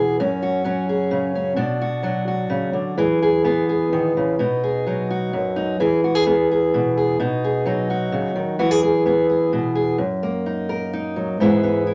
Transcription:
Already playing: B2 E3 B3 G#4
0.20 F#2 C#4
0.42 F#4
0.64 F#3 C#4
0.89 G#4
1.11 C#3
1.35 C#4
1.56 B2 D4
1.81 F#4
2.03 F#3 D4
2.28 F#4
2.50 C#3
2.73 D3
2.98 E3 G#4
3.22 G#4
3.44 B3 G#4
3.69 G#4
3.93 D#3
4.17 C#3
4.39 B2 D#4
4.64 G#4
4.87 F#3 D#4
5.11 F#4
5.33 F#2
5.56 D#4
5.80 E3 G#4
6.04 F#4
6.15 G#4
6.26 B3 G#4
6.51 G#4
6.74 B2
6.97 G#4
7.20 B2 D#4
7.44 G#4
7.66 F#3 D#4
7.90 F#4
8.12 C#3
8.36 D#3
8.59 E3 F#4
8.71 G#4
8.83 G#4
9.06 B3 G#4
9.30 G#4
9.53 B2
9.75 G#4
9.98 F#2
10.23 A#3
10.46 D#4
10.69 A#4
10.93 D#4
11.16 F#3
11.40 G#2 E3 B3 E4 G#4
11.63 B3
11.87 E4

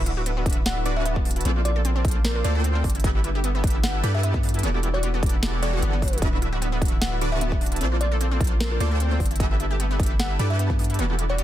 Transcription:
Already playing: D1 D3 B3 D4 E4 F#4 A4 B4 E5
0.06 E4, closed hi-hat
0.17 F#4
0.26 B3, closed hi-hat
0.37 B3
0.46 D1 D4 F#4 B4 E5, kick, closed hi-hat
0.50 closed hi-hat
0.53 closed hi-hat
0.57 E4
0.66 B3 F#5, snare, closed hi-hat
0.77 E4
0.86 D3 D4 E4 F#4 B4 D5, closed hi-hat
0.96 D3 D4 F#4 B4 E5 A5
1.05 B3 E5, closed hi-hat
1.16 B3, kick
1.25 D4, open hi-hat
1.31 closed hi-hat
1.36 E4, closed hi-hat
1.41 closed hi-hat
1.45 A#1 A#3 C4 D4 F4 A4 C5 D5, closed hi-hat
1.56 F4
1.65 F4 D5, closed hi-hat
1.76 A4
1.85 C4, closed hi-hat
1.96 C4
2.05 A#1 A#3 D4 F4 A4 C5 D5, kick, closed hi-hat
2.08 closed hi-hat
2.11 closed hi-hat
2.15 F4
2.25 C4 A#4, snare, closed hi-hat
2.35 F4 A#4
2.44 D2 A#3 F4 A4 C5 D5, closed hi-hat
2.55 A#3 F4 A4 C5 G5
2.64 C4, closed hi-hat
2.75 C4
2.84 G1 G3 D4 E4 A4 B4, kick, open hi-hat
2.90 closed hi-hat
2.95 E4, closed hi-hat
3.00 closed hi-hat
3.04 G3 B3 G4 A4 B4 E5, kick, closed hi-hat
3.15 E4
3.24 E4, closed hi-hat
3.35 G4
3.44 B3, closed hi-hat
3.55 B3
3.64 G1 D4 G4 A4 B4 E5, kick, closed hi-hat
3.67 closed hi-hat
3.70 closed hi-hat
3.75 E4
3.84 B3 F#5, snare, closed hi-hat
3.95 E4
4.04 G2 G3 E4 G4 A4 B4 D5, closed hi-hat
4.14 G3 G4 A4 B4 E5 A5
4.23 B3 E5, closed hi-hat
4.34 B3, kick
4.43 D4, open hi-hat
4.49 closed hi-hat
4.54 E4, closed hi-hat
4.59 closed hi-hat
4.63 E1 E3 G3 B3 D4 F#4 G4 A4 D5 F#5, closed hi-hat
4.74 E4
4.83 E4, closed hi-hat
4.94 F#4 D5
5.03 B3, closed hi-hat
5.14 B3
5.23 E1 E3 B3 D4 F#4 G4 A4 D5, kick, closed hi-hat
5.26 closed hi-hat
5.29 closed hi-hat
5.34 E4
5.43 B3, snare, closed hi-hat
5.53 E4
5.62 E3 B3 E4 F#4 G4 A4 C#5 D5, closed hi-hat
5.73 E3 B3 F#4 G4 A4 F#5
5.82 G1 B3, closed hi-hat
5.93 B3
6.02 F#1 D4, kick, open hi-hat
6.08 closed hi-hat
6.13 E4, closed hi-hat
6.18 closed hi-hat
6.22 D1 D3 B3 D4 E4 F#4 A4 B4 E5, kick, closed hi-hat
6.33 E4
6.42 E4, closed hi-hat
6.53 F#4
6.62 B3, closed hi-hat
6.72 B3
6.82 D1 D3 D4 F#4, kick, closed hi-hat
6.85 closed hi-hat
6.88 E4, closed hi-hat
7.01 B3 F#5, snare, closed hi-hat
7.12 E4
7.21 D3 D4 E4 F#4 B4 D5, closed hi-hat
7.32 D3 D4 F#4 B4 E5 A5
7.41 B3 E5, closed hi-hat
7.52 B3, kick
7.61 D4, open hi-hat
7.66 closed hi-hat
7.72 E4, closed hi-hat
7.76 closed hi-hat
7.81 A#1 A#3 C4 D4 F4 A4 C5 D5, closed hi-hat
7.92 F4
8.01 F4 D5, closed hi-hat
8.12 A4
8.21 C4, closed hi-hat
8.31 C4
8.40 A#1 A#3 D4 F4 A4 C5 D5, kick, closed hi-hat
8.44 closed hi-hat
8.47 closed hi-hat
8.51 F4
8.60 C4 A#4, snare, closed hi-hat
8.71 F4 A#4
8.80 D2 A#3 F4 A4 C5 D5, closed hi-hat
8.91 A#3 F4 A4 C5 G5
9.00 C4, closed hi-hat
9.11 C4
9.20 G1 G3 D4 E4 A4 B4, kick, open hi-hat
9.26 closed hi-hat
9.31 E4, closed hi-hat
9.36 closed hi-hat
9.40 G3 B3 G4 A4 B4 E5, kick, closed hi-hat
9.51 E4
9.60 E4, closed hi-hat
9.71 G4
9.80 B3, closed hi-hat
9.91 B3
10.00 G1 D4 G4 A4 B4 E5, kick, closed hi-hat
10.03 closed hi-hat
10.06 closed hi-hat
10.11 E4
10.20 B3 F#5, snare, closed hi-hat
10.30 E4
10.39 G2 G3 E4 G4 A4 B4 D5, closed hi-hat
10.50 G3 G4 A4 B4 E5 A5
10.59 B3 E5, closed hi-hat
10.70 B3, kick
10.79 D4, open hi-hat
10.84 closed hi-hat
10.90 E4, closed hi-hat
10.94 closed hi-hat
10.99 E1 E3 G3 B3 D4 F#4 G4 A4 D5 F#5, closed hi-hat
11.10 E4
11.19 E4, closed hi-hat
11.29 F#4 D5
11.38 B3, closed hi-hat

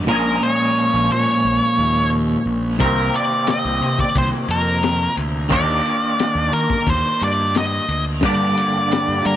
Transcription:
0.07 A#1 A#2 F3 G#3 C#4 G#4 A#4
0.43 C#5
0.94 A#1
1.11 A#2 C#5
1.45 A#1
1.78 D#2
2.46 A#1
2.79 C2 C3 D#3 A#3 C4 G4 A#4, kick, ride
3.14 D5, ride
3.47 D#5, snare, ride
3.65 C2
3.81 C3, ride
3.99 D5, kick
4.15 C2 C5, kick, ride
4.33 snare
4.48 F2 A#4, ride
4.83 snare, ride
5.17 D2, ride
5.49 D#2 D#3 A#3 D4 D5, kick, ride
5.53 G4
5.85 ride
6.19 snare, ride
6.35 D#2
6.51 D#3 A#4, ride
6.70 kick
6.87 D#2 C5, kick, ride
7.20 G2 D5, ride
7.55 D#5, snare, ride
7.88 D2, ride
8.21 G2 D3 G3 A#3 D4 G4, kick, ride
8.26 D5
8.57 ride
8.92 snare, ride
9.08 G2
9.25 G3 A#4, ride

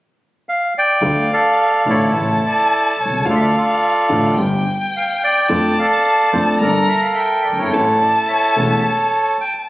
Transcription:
0.49 F5
0.78 D5 G5
1.01 D2 D3 F3 A3 F4 F5
1.33 A4 D5 F5
1.86 A1 A2 D3 F3 A3 E4 F4 A4 C#5
2.13 A1 A2 C#3 E3 A3 E4 A5
2.45 A4 D5
2.98 C2 C#5
3.05 B1
3.12 C2
3.19 C#2
3.25 D2 D3 F3 A3 F4 F5
3.29 F4 A4 D5
3.35 E5
3.41 D5
3.57 F4 A4 D5
4.09 A1 A2 D3 F3 A3 F4
4.37 G1 G2 D3 G3 B3 G4 G5
4.96 F5
5.23 D5 G5
5.49 F2 F3 A3 D4 A4 A5
5.79 A4 D5 F5
6.33 F2 F3 A3 D4 A4 C5
6.61 G1 G2 G3 A#3 D4 A4 A#4 D5 A#5
6.89 E5
7.01 F5
7.15 E5 G5
7.44 G1 D5
7.52 F#1
7.58 G1 E4 A4 C#5
7.66 G#1
7.73 A1 A2 E3 A3 C#4 A4 A5
8.00 D5
8.28 A4 C#5 E5
8.56 E1 E2 E3 A3 C#4 A4
9.41 G5

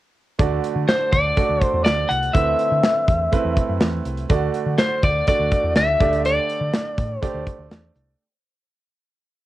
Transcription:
0.39 D2 D3 A3 D4 F#4 D5, kick, closed hi-hat
0.64 closed hi-hat
0.76 D3
0.89 C5, snare, closed hi-hat
1.12 D2 D5, kick, closed hi-hat
1.37 A3 D4 F#4 D5, kick, closed hi-hat
1.49 D2
1.61 C5, kick, closed hi-hat
1.74 E2
1.84 D2 D5, snare, closed hi-hat
2.09 C2 F#5, closed hi-hat
2.23 closed hi-hat
2.33 D2 D3 A3 C4 E4 B4 E5, kick, closed hi-hat
2.59 closed hi-hat
2.72 D3
2.83 snare, closed hi-hat
3.08 E2, kick, closed hi-hat
3.32 A3 C4 E4 B4, kick, closed hi-hat
3.45 E2
3.57 kick, closed hi-hat
3.69 F#2
3.80 E2, snare, closed hi-hat
4.05 C2, closed hi-hat
4.17 closed hi-hat
4.29 D2 D3 A3 D4 F#4 D5, kick, closed hi-hat
4.54 closed hi-hat
4.66 D3
4.78 C5, snare, closed hi-hat
5.03 D2 D5, kick, closed hi-hat
5.27 A3 D4 F#4 D5, kick, closed hi-hat
5.39 D2
5.52 kick, closed hi-hat
5.63 E2
5.76 D2 E5, snare, closed hi-hat
6.00 D2 D3 A3 D4 G4 D5, kick, closed hi-hat
6.13 closed hi-hat
6.25 D5, closed hi-hat
6.49 closed hi-hat
6.61 D3
6.74 snare, closed hi-hat
6.98 A2, kick, closed hi-hat
7.21 A3 D4 G4 C5 D5, kick, closed hi-hat
7.34 D2
7.47 kick, closed hi-hat
7.59 D2
7.71 E2, snare, closed hi-hat
7.96 C2, closed hi-hat

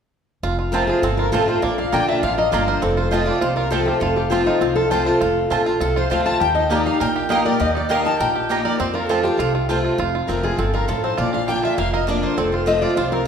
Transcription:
0.43 F1 F2 F4
0.59 F4
0.72 F3 A3 C4 F4 A#4 C5 A5
0.87 F4 G#4
1.02 G1 C3 C4 A4
1.17 F4 A#4
1.32 A1 F3 A3 C4 F4 A4 C5 A5
1.48 F4 C5
1.62 A#1 A#2 A#3 D5
1.78 D4 F5
1.92 A#1 D3 A#3 D4 F4 A#4 D5 G5 A#5
2.08 D4 E5
2.23 A1 F2 F4 F5
2.38 A#4 D#5
2.52 G1 D3 A#3 D4 F4 D5 A#5
2.68 A#4 C5
2.82 F1 F2 C4 A4
2.97 F4 C5
3.11 F3 A3 C4 F4 C5 D#5 A5
3.25 F4 D5
3.41 C2 C3 F4 C5
3.56 F4 A#4
3.70 F3 A3 C4 F4 A4 C5 A5
3.85 F4 G4
4.00 F1 F2 F4 A4
4.16 F4 G4
4.30 F3 A3 C4 F4 C5 A5
4.46 D#4 F4
4.61 C2 C3 C4 F4
4.75 F4 A4
4.90 F3 A3 C4 F4 C5 A5
5.06 C4 F4 A4
5.21 F1 F2 F4
5.50 A#1 F3 A3 C4 F4 C5 A5
5.66 C4 F4
5.80 C2 C3 F4 A4
5.96 F4 C5
6.10 D2 F3 A3 C4 F4 C5 F5 A5
6.26 F4 A5
6.40 D#2 D#3 G4 G5
6.55 D#4 D#5
6.70 A#3 D#4 G4 A#4 D5 D#5 A#5
6.86 D#4 F5
7.00 A#1 A#2 A#4 G5
7.16 G4
7.29 A#3 D#4 G4 A#4 D#5 F5 A#5
7.45 G4 A#4 D5
7.60 D#2 D#3 G4 D#5
7.75 D#4 D5
7.89 A#3 D#4 G4 A#4 D#5 F5 A#5
8.04 D#4 G4 A#4 A5
8.19 A#1 A#2 A#4 G5
8.36 G4
8.49 A#3 D#4 G4 A#4 D#5 A#5
8.64 A#4 D5
8.79 F2 C4 C5
8.94 F4 A#4
9.07 F3 A3 C4 F4 A4 C5 A5
9.11 C4 F4
9.23 C4 F4 G4
9.37 C2 C3 F4 A4
9.55 F4
9.69 F3 A3 C4 F4 C5 A5
9.85 F4
9.98 F1 F2 F4
10.15 F4
10.27 F1 F3 A3 C4 F4 A#4
10.43 F4 G#4
10.57 G1 G2 C4 A4
10.73 F4 A#4
10.88 A1 A2 F4 A4
11.04 C4 C5
11.17 A#1 A#2 F4 D5
11.33 D4 F5
11.48 D3 A#3 D4 F4 G5
11.63 F4 E5
11.78 F1 F2 A#3 F5
11.94 A#4 D#5
12.07 D3 A#3 D4 F4 D5
12.23 A#3 C5
12.37 F1 F2 C4 A4
12.52 F4 C5
12.66 F3 A3 C4 F4 D#5
12.82 F4 D5
12.96 C2 C3 F4 C5
13.12 C4 A#4

